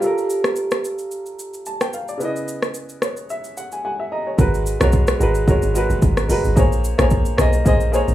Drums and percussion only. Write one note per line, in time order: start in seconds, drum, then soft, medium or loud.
0.02 shaker medium
0.18 shaker soft
0.30 shaker medium
0.44 cross-stick medium
0.44 shaker soft
0.56 shaker medium
0.71 cross-stick loud
0.71 shaker medium
0.84 shaker medium
0.98 shaker medium
1.11 shaker medium
1.26 shaker soft
1.39 shaker medium
1.54 shaker soft
1.66 shaker medium
1.81 cross-stick medium
1.81 shaker medium
1.93 shaker medium
2.08 shaker soft
2.21 shaker medium
2.36 shaker soft
2.48 shaker medium
2.62 cross-stick medium
2.62 shaker soft
2.74 shaker medium
2.89 shaker medium
3.02 cross-stick medium
3.02 shaker medium
3.17 shaker medium
3.29 shaker medium
3.44 shaker soft
3.57 shaker medium
3.72 shaker soft
4.39 kick loud
4.39 shaker medium
4.54 shaker medium
4.66 shaker loud
4.81 cross-stick loud
4.81 shaker medium
4.92 kick loud
4.92 shaker medium
5.07 cross-stick loud
5.07 shaker medium
5.21 shaker loud
5.35 shaker medium
5.48 kick loud
5.48 shaker medium
5.62 shaker medium
5.75 shaker medium
5.90 shaker medium
6.02 kick loud
6.02 shaker medium
6.17 cross-stick medium
6.17 shaker medium
6.30 open hi-hat medium
6.30 shaker loud
6.45 shaker medium
6.57 kick loud
6.57 shaker medium
6.72 shaker medium
6.84 shaker loud
6.99 cross-stick loud
6.99 shaker soft
7.10 kick loud
7.10 shaker medium
7.25 shaker medium
7.38 cross-stick loud
7.38 shaker medium
7.53 shaker medium
7.66 kick loud
7.66 shaker medium
7.81 shaker medium
7.94 shaker medium
8.08 shaker soft